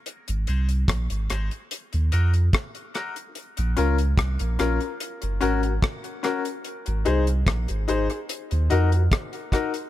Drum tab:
HH |xxxxxxxxxxxxxxxx|xxxxxxxxxxxxxxxx|xxxxxxxxxxxxxxxx|
SD |----r-r-----r-r-|----r-r-----r-r-|----r-------r-r-|
BD |----o-------o---|----o-------o---|----o-------o-o-|